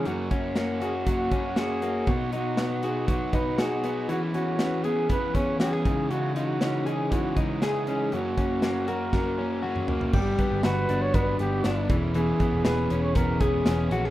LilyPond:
<<
  \new Staff \with { instrumentName = "Trumpet" } { \time 4/4 \key fis \mixolydian \tempo 4 = 119 fis'8 r4 gis'8 fis'4 gis'4 | fis'8 fis'4 gis'8 fis'8 b'8 gis'4 | fis'8 fis'4 gis'8 b'8 cis''8 gis'4 | fis'8 fis'4 gis'8 fis'8 r8 gis'4 |
fis'4. ais'4. r4 | g'4 b'8. cis''16 b'8 g'4 r8 | gis'4 b'8. cis''16 ais'8 gis'4 r8 | }
  \new Staff \with { instrumentName = "Clean electric guitar" } { \time 4/4 \key fis \mixolydian fis,8 cis'8 ais8 fis'8 fis8 cis'8 fis'8 ais8 | b,8 dis'8 b8 fis'8 fis8 dis'8 fis'8 b8 | e8 cis'8 b8 gis'8 b8 cis'8 fis'16 gis'16 cis8 | cis8 dis'8 cis'8 gis'8 e8 dis'8 gis'8 cis'8 |
fis,8 cis'8 ais8 fis'8 fis8 cis'8 fis'8 ais8 | g8 b8 fis'8 d'8 b4 d'8 e8 | e8 b8 gis'8 cis'8 b8 gis'8 cis'8 fis'16 gis'16 | }
  \new Staff \with { instrumentName = "Overdriven electric guitar" } { \time 4/4 \key fis \mixolydian <fis, cis fis ais cis' fis'>8 <fis ais cis' fis'>8 <fis ais cis' fis'>8 <fis ais cis' fis'>8 <fis, cis fis ais cis' fis'>8 <fis ais cis' fis'>8 <fis ais cis' fis'>8 <fis ais cis' fis'>8 | <b, fis b dis' fis'>8 <b dis' fis'>8 <fis b dis' fis'>8 <b dis' fis'>8 <b, fis b dis' fis'>8 <b dis' fis'>8 <fis b dis' fis'>8 <b dis' fis'>8 | <e b cis' gis'>8 <b cis' gis'>8 <e b cis' gis'>8 <b cis' gis'>8 <e b cis' gis'>8 <b cis' gis'>8 <e b cis' gis'>8 <e gis dis'>8 | <cis e gis dis'>8 <e gis dis'>8 <cis e gis dis'>8 <e gis dis'>8 <cis e gis dis'>8 <e gis dis'>8 <cis e gis dis'>8 <e gis dis'>8 |
<fis, cis fis ais cis'>8 <fis ais cis'>8 <cis fis ais cis'>8 <fis ais cis'>8 <fis, cis fis ais cis'>8 <fis ais cis'>8 <cis fis ais cis'>8 <fis ais cis'>8 | <g, d fis b d'>8 <fis b d'>8 <g, d fis b d'>8 <fis b d'>8 <d fis b d'>8 <fis b d'>8 <g, d fis b d'>8 <b cis' gis'>8 | <e b cis' gis'>8 <b cis' gis'>8 <e b cis' gis'>8 <b cis' gis'>8 <e b cis' gis'>8 <b cis' gis'>8 <e b cis' gis'>8 <b cis' gis'>8 | }
  \new Staff \with { instrumentName = "Picked electric bass" } { \clef bass \time 4/4 \key fis \mixolydian r1 | r1 | r1 | r1 |
r1 | g,,8 r16 g,,16 g,,8 g,,8 g,,8 g,,8 g,,8 e,,8~ | e,,8 r16 e,,16 e,,8 e,,8 e,,8 e,,8 e,,8 ais,,8 | }
  \new DrumStaff \with { instrumentName = "Drums" } \drummode { \time 4/4 hh8 <hh bd>8 <hh sn>8 hh8 <hh bd>8 <hh bd>8 <hh sn>8 hh8 | <hh bd>8 hh8 <hh sn>8 hh8 <hh bd>8 <hh bd>8 <hh sn>8 hh8 | hh8 hh8 <hh sn>8 hh8 <hh bd>8 <hh bd>8 <hh sn>8 <hh bd>8 | hh8 hh8 <hh sn>8 hh8 <hh bd>8 <hh bd>8 <hh sn>8 hh8 |
hh8 <hh bd>8 <hh sn>8 hh8 <bd sn>4 r16 toml16 tomfh16 tomfh16 | <cymc bd>8 <hh bd>8 <hh sn>8 hh8 <hh bd>8 hh8 <hh sn>8 <hh bd>8 | hh8 <hh bd>8 <hh sn>8 hh8 <hh bd>8 <hh bd>8 <hh sn>8 hh8 | }
>>